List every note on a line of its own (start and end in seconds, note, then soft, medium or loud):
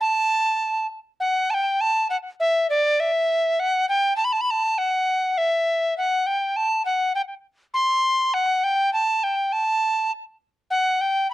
0.01 0.86 A5 loud
1.20 1.52 F#5 medium
1.50 1.82 G5 medium
1.50 1.55 A5 medium
1.81 2.10 A5 medium
2.10 2.17 F#5 medium
2.40 2.67 E5 medium
2.70 3.01 D5 medium
3.00 3.61 E5 medium
3.60 3.88 F#5 loud
3.89 4.16 G5 loud
4.17 4.26 A5 medium
4.25 4.34 B5 medium
4.33 4.42 A5 medium
4.41 4.52 B5 medium
4.51 4.80 A5 medium
4.78 5.39 F#5 loud
5.38 5.97 E5 medium
5.98 6.28 F#5 medium
6.26 6.58 G5 medium
6.56 6.85 A5 medium
6.85 7.13 F#5 medium
7.15 7.22 G5 medium
7.74 8.35 C6 loud
8.34 8.65 F#5 medium
8.64 8.93 G5 medium
8.93 9.25 A5 medium
9.24 9.54 G5 medium
9.53 10.12 A5 medium
10.71 11.03 F#5 loud
11.01 11.30 G5 loud